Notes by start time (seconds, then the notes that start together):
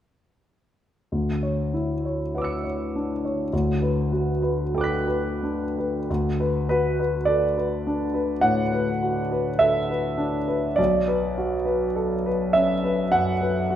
1.12 D2
1.43 C#5
1.74 E4
2.05 C#5
2.35 B4 F#5 D6
2.42 E6 C#7
2.64 C#5
2.96 D4
3.25 C#5
3.53 D2
3.82 B4
4.12 F#4
4.42 B4
4.74 A4 G5 D6
4.81 F#6 B6
5.08 B4
5.43 D4
5.78 B4
6.10 D2
6.40 B4
6.69 F#4 B4
7.00 B4
7.25 A4 D5
7.58 B4
7.87 D4
8.14 B4
8.41 A2 F#5
8.73 B4
9.03 F#4
9.32 B4
9.59 A4 E5
9.90 B4
10.17 D4
10.48 B4
10.76 B1 D5
11.08 B4
11.38 F#4
11.65 B4
11.96 A4
12.26 B4
12.53 C#4 E5
12.84 B4
13.12 F#2 F#5
13.41 B4
13.70 F#4